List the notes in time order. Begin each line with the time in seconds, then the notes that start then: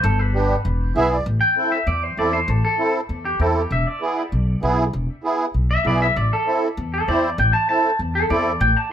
0.04 G1 A4
0.19 B4
0.34 B3 D4 G4
0.65 E1
0.96 B1 B3 E4 G#4 E5
1.11 D5
1.26 A1
1.41 G5
1.57 C4 E4 A4
1.72 E5
1.87 E2 D5
2.03 C5
2.17 E2 C4 E4 A4 D5
2.33 C5
2.48 A1 A4
2.65 A4
2.78 C4 E4 A4
3.09 E2
3.25 G4
3.40 E2 C4 E4 A4
3.56 G4
3.71 E1 E5
3.87 D5
4.00 B3 E4 G#4
4.32 B1
4.62 B1 B3 E4 G#4
4.93 E1
5.24 B3 E4 G#4
5.54 B1
5.71 E5
5.85 B1 B3 E4 G#4 D5
6.02 E5
6.16 A1 D5
6.33 A4
6.47 C4 E4 A4
6.77 E2
6.94 A4
7.08 E2 C4 E4 C5 D5
7.38 A1 G5
7.53 A5
7.69 C4 E4 A4 A5
7.99 E2
8.15 A4
8.30 E2 C4 E4 A4 D5
8.61 A1 G5
8.77 A5